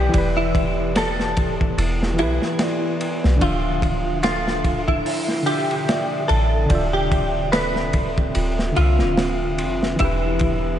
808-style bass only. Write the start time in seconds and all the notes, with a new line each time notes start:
0.15 E1
1.78 E1
2.20 B1
3.25 B1
3.42 D1
6.30 A1
6.71 D1
8.36 D1
8.78 C2
9.01 D1
9.61 F1
10.01 E1